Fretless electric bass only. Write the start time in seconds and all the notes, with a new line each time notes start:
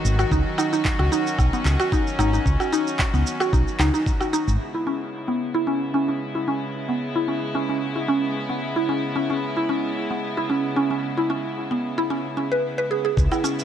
0.05 G#1
0.31 C#2
0.99 C#2
1.39 B1
1.65 C#2
2.19 G#1
2.46 C#2
3.14 C#2
3.53 B1
3.79 C#2
4.48 G#1
13.17 C#2